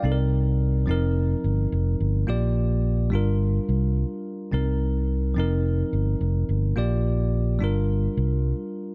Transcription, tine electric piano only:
\new Staff \with { instrumentName = "Tine electric piano" } { \time 4/4 \key f \dorian \tempo 4 = 107 << { d''16 r2. r8. | r1 | r1 | r1 | } \\ { <c c' ees' a' bes'>4. <f c' ees' bes'>2~ <f c' ees' bes'>8 | <bes f' g' d''>4. <g d' f' bes'>2~ <g d' f' bes'>8 | <c c' ees' bes'>4. <f c' ees' bes'>2~ <f c' ees' bes'>8 | <bes f' g' d''>4. <g d' f' bes'>2~ <g d' f' bes'>8 | } >> }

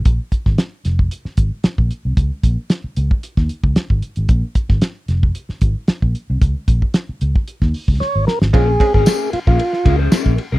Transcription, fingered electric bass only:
\new Staff \with { instrumentName = "Fingered electric bass" } { \clef bass \time 4/4 \key bes \minor \tempo 4 = 113 bes,,16 r8 aes,,16 r8 f,,8 r8 aes,,16 r8 bes,,16 r16 c,16 | des,16 r16 bes,,16 r8. des,16 r8 ees,16 r16 des,16 r16 aes,,16 r16 aes,,16 | bes,,16 r8 aes,,16 r8 f,,8 r8 aes,,16 r8 bes,,16 r16 c,16 | des,16 r16 bes,,16 r8. des,16 r8 ees,16 r16 des,16 r16 aes,,16 r16 aes,,16 |
bes,,8 r16 aes,,16 r8. bes,,16 r8 des,8 r16 bes,,16 r16 c,16 | }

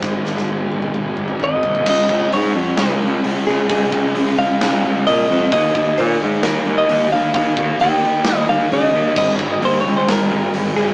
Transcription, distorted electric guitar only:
\new Staff \with { instrumentName = "Distorted electric guitar" } { \clef bass \time 4/4 \key des \major \tempo 4 = 132 <aes, ees aes>1 | <des aes des'>8 <aes des'>8 <des aes des'>8 <des aes des'>8 <des aes des'>8 <des aes des'>8 <des aes des'>8 <aes des'>8 | <des aes des'>8 <aes des'>8 <des aes des'>8 <des aes des'>8 <des aes des'>8 <des aes des'>8 <des aes des'>8 <aes des'>8 | <ees bes ees'>8 <bes ees'>8 <ees bes ees'>8 <ees bes ees'>8 <ees bes ees'>8 <ees bes ees'>8 <ees bes ees'>8 <bes ees'>8 |
<ees bes ees'>8 <bes ees'>8 <ees bes ees'>8 <ees bes ees'>8 <ees bes ees'>8 <ees bes ees'>8 <ees bes ees'>8 <bes ees'>8 | <aes, ees aes>8 <ees aes>8 <aes, ees aes>8 <aes, ees aes>8 <aes, ees aes>8 <aes, ees aes>8 <aes, ees aes>8 <ees aes>8 | }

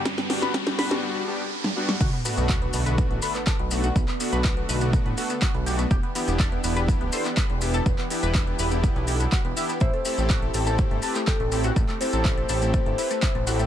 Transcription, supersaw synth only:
\new Staff \with { instrumentName = "Supersaw synth" } { \time 4/4 \key b \phrygian \tempo 4 = 123 r8 <g b d' fis'>4 <g b d' fis'>4 <g b d' g'>8 r8 <g b d' fis'>8 | r8 <a b d' fis'>4 <a b d' fis'>4 <a b d' a'>8 r8 <a b d' fis'>8 | r8 <a b d' fis'>4 <a b d' fis'>4 <a b d' a'>8 r8 <a b d' fis'>8 | r8 <b d' e' g'>4 <b d' e' g'>4 <b d' e' a'>8 r8 <b d' e' g'>8 |
r8 <b d' e' g'>4 <b d' e' g'>4 <b d' e' a'>8 r8 <b d' e' g'>8 | r8 <c' e' g' a'>4 <c' e' g' a'>4 <c' e' g' b'>8 r8 <c' e' g' a'>8 | r8 <c' e' g' a'>4 <c' e' g' a'>4 <c' e' g' b'>8 r8 <c' e' g' a'>8 | }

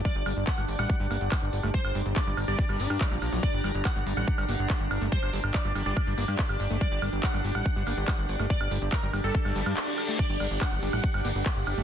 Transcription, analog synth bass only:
\new Staff \with { instrumentName = "Analog synth bass" } { \clef bass \time 4/4 \key g \minor \tempo 4 = 142 r16 g,,16 g,,16 g,,16 r16 g,,16 g,,16 a,,16 r16 g,,16 g,,16 g,,16 r16 g,,16 g,,16 g,,16 | r16 g,,16 g,,16 g,,16 r16 g,,16 g,,16 g,,16 r16 g,,16 g,,16 g,16 r16 bes,,16 bes,,16 bes,,16 | r16 g,,16 g,,16 g,,16 r16 g,,16 g,,16 a,,16 r16 g,,16 g,,16 g,,16 r16 g,,16 g,,16 g,,16 | r16 g,,16 g,,16 g,,16 r16 g,,16 g,,16 g,,16 r16 g,,16 g,,16 g,16 r16 g,,16 g,,16 g,,16 |
r16 g,,16 g,,16 g,,16 r16 g,,16 g,,16 a,,16 r16 g,,16 g,,16 g,,16 r16 g,,16 g,,16 g,,16 | r16 g,,16 g,,16 g,,16 r16 g,,16 g,,16 g,,16 r16 g,,16 g,,16 g,16 r4 | r16 g,,16 g,,16 g,,16 r16 g,,16 g,,16 a,,16 r16 g,,16 g,,16 g,,16 r16 g,,16 g,,16 g,,16 | }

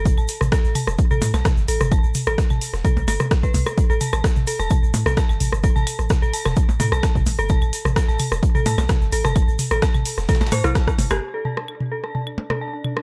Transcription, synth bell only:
\new Staff \with { instrumentName = "Synth bell" } { \time 4/4 \key d \mixolydian \tempo 4 = 129 r16 a''16 r8 a'16 r16 a''16 r8 a'16 r16 a''16 r8 a'16 r16 | a''16 r8 a'16 r16 a''16 r8 a'16 r16 a'16 r8 b'16 r16 a'16 | r16 a'16 a''16 a''16 r8 a'16 a''16 a''16 r8 a'16 a''16 a''16 r8 | a'16 a''16 a''16 r8 a'16 a''16 a''16 r8 a'16 a''16 a''16 r8 a'16 |
a''16 a''16 r8 a'16 a''16 a''16 r8 a'16 a''16 a''16 r8 a'16 a''16 | a''16 r8 a'16 a''16 a''16 r8 a'16 a''16 c''16 e'16 a''16 a''16 r16 g'16 | r16 a'16 a''16 a''16 r8 a'16 a''16 a''16 r8 a'16 a''16 a''16 r8 | }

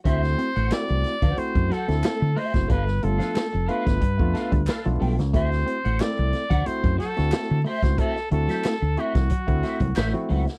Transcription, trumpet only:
\new Staff \with { instrumentName = "Trumpet" } { \time 4/4 \key d \mixolydian \tempo 4 = 91 c''4 d''4 c''8 a'4 c''8 | b'8 a'4 b'2 r8 | c''4 d''4 c''8 a'4 c''8 | a'8 a'4 fis'2 r8 | }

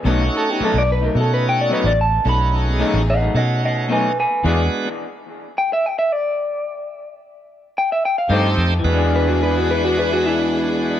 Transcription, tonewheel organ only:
\new Staff \with { instrumentName = "Tonewheel organ" } { \time 4/4 \key e \mixolydian \tempo 4 = 109 <a cis' dis' fis'>4. r8 <a cis' dis' fis'>4. r8 | <a cis' dis' fis'>4. r8 <a cis' dis' fis'>4. r8 | <gis b d' fis'>4 r2. | r2. <a c' ees' g'>4 |
<gis b d' fis'>1 | }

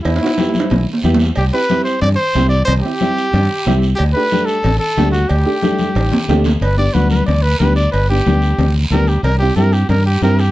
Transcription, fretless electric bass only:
\new Staff \with { instrumentName = "Fretless electric bass" } { \clef bass \time 4/4 \key g \major \tempo 4 = 183 e,8 r4. b,,8 r8 e,4 | c,8 r4. g,8 r8 c,4 | c,8 r4. g,8 r8 c,4 | d,8 r4. a,,8 r8 d,4 |
d,8 r4. a,,8 r8 d,4 | g,,4 d,4 d,4 d,4 | g,,4 d,4 d,4 d,4 | c,4 g,4 g,4 g,4 | }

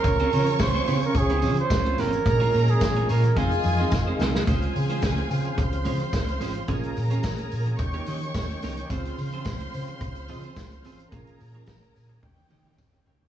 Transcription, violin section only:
\new Staff \with { instrumentName = "Violin section" } { \time 4/4 \key des \lydian \tempo 4 = 108 <des' des'''>2.~ <des' des'''>8 r8 | <bes' bes''>4. r8 <aes' aes''>4. r8 | <aes' aes''>2 <c'' c'''>2 | <bes' bes''>2 <des'' des'''>2 |
<c'' c'''>1 | <bes' bes''>2 <g' g''>2 | }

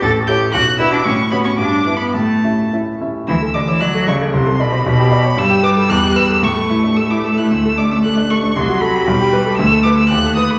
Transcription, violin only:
\new Staff \with { instrumentName = "Violin" } { \time 2/4 \key d \major \tempo 4 = 114 a'''8 g'''8 fis'''8 e'''16 d'''16 | cis'''8 b''16 cis'''16 \tuplet 3/2 { d'''4 b''8 } | a''4 r4 | e'''8 d'''16 e'''16 fis'''8 cis'''8 |
c'''8 b''8 b''4 | e'''8 d'''16 e'''16 fis'''8 e'''8 | cis'''4 e'''16 d'''16 e'''16 fis'''16 | e'''8 d'''16 e'''16 fis'''8 cis'''8 |
c'''8 b''8 b''4 | \key b \dorian e'''8 d'''16 e'''16 fis'''8 dis'''16 b''16 | }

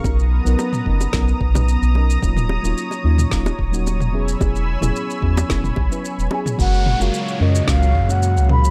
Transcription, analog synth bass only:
\new Staff \with { instrumentName = "Analog synth bass" } { \clef bass \time 4/4 \key fis \major \tempo 4 = 110 b,,8. b,,16 r8 fis,,8 b,,8 b,,8. b,,8. | dis,,8. dis,,16 r8 dis,8 dis,,8 dis,,8. e,,8. | e,,8. e,,16 r8 e,8 e,,8 b,,16 r8 e,,16 r8 | fis,,8. fis,,16 r8 fis,8 cis,8 fis,8. cis,8. | }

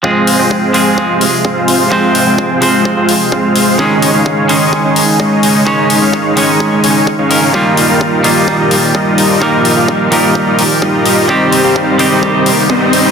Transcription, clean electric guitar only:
\new Staff \with { instrumentName = "Clean electric guitar" } { \time 4/4 \key f \minor \tempo 4 = 128 <f aes c' aes'>4. <f aes c' aes'>2~ <f aes c' aes'>8 | <f aes c' c''>4. <f aes c' c''>2~ <f aes c' c''>8 | <ees aes des' aes'>4. <ees aes des' aes'>2~ <ees aes des' aes'>8 | <ees aes des' des''>4. <ees aes des' des''>2 <ees aes des' bes'>8 |
<ees g bes f'>4. <ees g bes f'>2~ <ees g bes f'>8 | <ees g bes bes'>4. <ees g bes bes'>2~ <ees g bes bes'>8 | <ees g c' g'>4. <ees g c' g'>2~ <ees g c' g'>8 | }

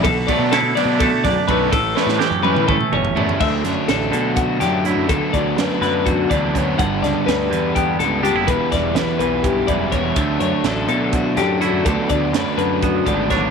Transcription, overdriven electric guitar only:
\new Staff \with { instrumentName = "Overdriven electric guitar" } { \time 7/8 \key d \major \tempo 4 = 124 r8 <b, fis b d'>8 r8 <b, fis b d'>8 r4 <b, fis b d'>8 | r8 <e g cis' e'>8 r8 <e g cis' e'>8 r4 <e g cis' e'>8 | <d fis a d'>8 <fis a d'>8 <d fis a d'>4. <fis a d'>8 <d fis a d'>8 | <d fis b d'>8 <fis b d'>8 <d fis b d'>4. <fis b d'>8 <d fis b d'>8 |
<g, d g b d'>8 <g b d'>8 <g, d g b d'>4. <g b d'>8 <d g b d'>8 | <e g b e'>8 <g b e'>8 <e g b e'>4. <g b e'>8 <e g b e'>8 | <d fis a d'>8 <fis a d'>8 <d fis a d'>4. <fis a d'>8 <d fis a d'>8 | <d fis b d'>8 <fis b d'>8 <d fis b d'>4. <fis b d'>8 <d fis b d'>8 | }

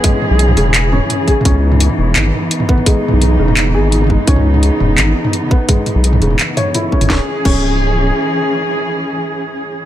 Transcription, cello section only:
\new Staff \with { instrumentName = "Cello section" } { \time 4/4 \key cis \minor \tempo 4 = 170 << { <cis' gis'>1 | <b dis'>1~ | <b dis'>1~ | <b dis'>1~ |
<b dis'>1 | <e cis' gis'>1~ | <e cis' gis'>1 | } \\ { e1~ | e1~ | e1~ | e1~ |
e1 | r1 | r1 | } >> }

